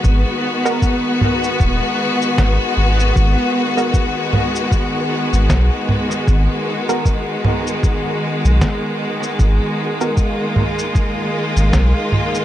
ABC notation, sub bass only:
X:1
M:4/4
L:1/16
Q:"Swing 16ths" 1/4=77
K:G#dor
V:1 name="Sub bass" clef=bass
G,,, z6 z D,,, z3 G,,, z G,,,2 | G,,, z8 z2 G,,, B,,, z3 | G,,, z8 z2 B,,, z4 | G,,, z8 z2 G,,, B,,, z3 |]